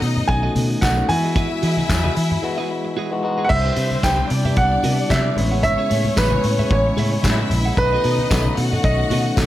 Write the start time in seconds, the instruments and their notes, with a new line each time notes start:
Already playing: tonewheel organ D#3 A3 B3 F#4, tine electric piano A3 C#4 D#4 F#4, string section D#4 D#5
0.02 fingered electric bass B2, open hi-hat, muted conga
0.17 muted clean electric guitar stroke, low conga
0.28 fingered electric bass B1, tine electric piano A3 C#4 D#4 F#4, grand piano G#5, muted clean electric guitar stroke, kick, closed hi-hat
0.43 clean electric guitar F#4 A4 D#5
0.55 fingered electric bass B2, clean electric guitar F#4 A4 D#5, open hi-hat, muted conga, high conga
0.81 fingered electric bass B1, clean electric guitar F#4 A4 D#5, grand piano F#5, kick, snare, clap, closed hi-hat, tambourine, high conga
0.97 tine electric piano A3 C#4 D#4 F#4, muted clean electric guitar stroke
1.08 tonewheel organ E3 G#3 E4, fingered electric bass E3, tine electric piano G#3 B3 E4 F#4, string section E4 E5, grand piano G#5, muted clean electric guitar stroke, open hi-hat, muted conga, low conga
1.24 clean electric guitar F#4 G#4 D#5
1.36 clean electric guitar F#4 G#4 D#5, kick, closed hi-hat, muted conga, low conga
1.51 muted clean electric guitar stroke
1.62 fingered electric bass E3, clean electric guitar F#4 G#4 D#5, open hi-hat, muted conga
1.77 clean electric guitar F#4 G#4 D#5, high conga
1.89 fingered electric bass E2, kick, snare, clap, closed hi-hat, tambourine, muted conga
2.04 clean electric guitar F#4 G#4 D#5, high conga
2.16 fingered electric bass E3, open hi-hat, muted conga
2.31 muted clean electric guitar stroke, low conga
2.43 tine electric piano G#3 B3 E4 F#4, muted clean electric guitar stroke
2.58 clean electric guitar F#4 G#4 D#5
2.69 muted clean electric guitar stroke
2.85 muted clean electric guitar stroke
2.97 clean electric guitar F#4 G#4 D#5
3.11 tine electric piano G#3 B3 D#4 F#4, muted clean electric guitar stroke
3.23 tine electric piano G#3 B3 D#4 F#4, muted clean electric guitar stroke
3.38 clean electric guitar F#4 G#4 D#5
3.45 grand piano F#5
3.49 fingered electric bass C2, tonewheel organ C3 G3 E4, tine electric piano G3, string section C4 C5, grand piano E5, muted clean electric guitar stroke, kick, crash, muted conga, low conga
3.64 clean electric guitar G4 B4 E5
3.76 fingered electric bass C3, clean electric guitar G4 B4 E5, open hi-hat
3.91 high conga
4.03 fingered electric bass C2, tine electric piano G3 B3 D4 E4, clean electric guitar G4 B4 E5, grand piano G5, kick, snare, clap, closed hi-hat, tambourine, muted conga
4.18 muted clean electric guitar stroke, high conga
4.30 fingered electric bass C3, string section D4 D5, muted clean electric guitar stroke, open hi-hat, muted conga
4.45 clean electric guitar G4 B4 E5, low conga
4.56 fingered electric bass C2, tine electric piano G3 B3 D4 G4, grand piano F#5, muted clean electric guitar stroke, kick, closed hi-hat, muted conga
4.72 muted clean electric guitar stroke
4.83 fingered electric bass C3, clean electric guitar G4 B4 E5, open hi-hat, high conga
4.99 muted clean electric guitar stroke
5.10 fingered electric bass C3, tine electric piano G3 B3 D4 E4, clean electric guitar G4 B4 E5, grand piano E5, kick, snare, clap, closed hi-hat, tambourine, muted conga, high conga
5.26 muted clean electric guitar stroke
5.36 fingered electric bass A1, tonewheel organ C#3 G#3 C#4, tine electric piano G#3 B3 C#4 E4, string section C#4 C#5, muted clean electric guitar stroke, open hi-hat, low conga
5.52 clean electric guitar G#4 C#5 F#5
5.63 grand piano E5, kick, closed hi-hat, muted conga, low conga
5.78 clean electric guitar G#4 C#5 E5
5.90 fingered electric bass A2, clean electric guitar G#4 C#5 E5, open hi-hat, muted conga
6.05 high conga
6.16 fingered electric bass A1, tine electric piano G#3 B3 C#4 E4, clean electric guitar G#4 C#5 E5, grand piano B4, kick, snare, clap, closed hi-hat, tambourine
6.32 muted clean electric guitar stroke, high conga
6.43 fingered electric bass A2, muted clean electric guitar stroke, open hi-hat, muted conga
6.59 clean electric guitar G#4 C#5 E5, low conga
6.69 fingered electric bass A1, tine electric piano G#3 B3 C#4 E4, grand piano C#5, muted clean electric guitar stroke, kick, closed hi-hat
6.87 muted clean electric guitar stroke
6.97 fingered electric bass A2, clean electric guitar G#4 C#5 E5, open hi-hat, high conga
7.13 muted clean electric guitar stroke
7.23 fingered electric bass A2, tine electric piano G#3 B3 C#4 E4, string section E4 E5, clean electric guitar G#4 C#5 E5, kick, snare, clap, closed hi-hat, tambourine, high conga
7.40 muted clean electric guitar stroke
7.50 fingered electric bass A#1, muted clean electric guitar stroke, open hi-hat, muted conga, low conga
7.65 clean electric guitar G#4 C#5 F#5
7.76 fingered electric bass B1, tonewheel organ D#3 B3 F#4, tine electric piano A3 C#4 D#4 F#4, string section D#4 D#5, grand piano B4, muted clean electric guitar stroke, kick, closed hi-hat, muted conga, low conga
7.93 clean electric guitar F#4 A4 D#5
8.04 fingered electric bass B2, clean electric guitar F#4 A4 D#5, open hi-hat
8.18 high conga
8.30 fingered electric bass B1, tine electric piano A3 C#4 D#4 F#4, clean electric guitar F#4 A4 D#5, kick, snare, clap, closed hi-hat, tambourine
8.46 muted clean electric guitar stroke, high conga
8.57 fingered electric bass B2, string section F#4 F#5, muted clean electric guitar stroke, open hi-hat
8.72 clean electric guitar F#4 A4 D#5, low conga
8.83 fingered electric bass B1, tine electric piano A3 C#4 D#4 F#4, grand piano D#5, muted clean electric guitar stroke, kick, closed hi-hat, muted conga
9.00 muted clean electric guitar stroke
9.10 fingered electric bass B2, clean electric guitar F#4 A4 D#5, open hi-hat, high conga
9.26 muted clean electric guitar stroke
9.36 fingered electric bass B2, tine electric piano A3 C#4 D#4 F#4, clean electric guitar F#4 A4 D#5, kick, snare, clap, closed hi-hat, tambourine, muted conga, high conga